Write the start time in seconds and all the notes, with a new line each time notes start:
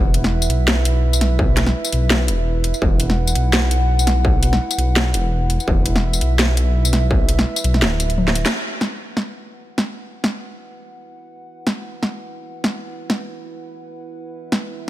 Already playing: E1 E4 B4 E5
0.14 closed hi-hat
0.24 snare
0.42 tambourine
0.49 B1, closed hi-hat
0.68 snare
0.85 closed hi-hat
1.13 tambourine
1.21 snare, closed hi-hat
1.39 kick
1.57 snare, closed hi-hat
1.67 snare
1.85 tambourine
1.92 B1, closed hi-hat
2.10 snare
2.28 E1, closed hi-hat
2.64 closed hi-hat
2.74 tambourine
2.82 E1 F#5, kick
3.00 closed hi-hat
3.10 snare
3.27 tambourine
3.35 B1, closed hi-hat
3.53 snare
3.71 closed hi-hat
3.99 tambourine
4.07 snare, closed hi-hat
4.25 kick
4.43 closed hi-hat
4.53 snare
4.71 tambourine
4.78 B1, closed hi-hat
4.96 snare
5.13 E1, closed hi-hat
5.50 closed hi-hat
5.60 tambourine
5.67 E1 E5, kick
5.86 closed hi-hat
5.96 snare
6.13 tambourine
6.21 B1, closed hi-hat
6.39 snare
6.57 closed hi-hat
6.85 tambourine
6.93 snare, closed hi-hat
7.11 kick
7.29 closed hi-hat
7.39 snare
7.56 tambourine
7.64 B1, closed hi-hat
7.74 snare
7.82 D1, snare
8.00 closed hi-hat, tambourine
8.10 closed hi-hat
8.18 high tom
8.28 snare
8.35 closed hi-hat
8.46 snare, tambourine
8.52 E4 B4 F#5
8.81 snare
9.17 snare
9.78 snare
10.24 snare
11.67 snare
12.03 snare
12.64 snare
13.10 snare
14.25 E5
14.52 snare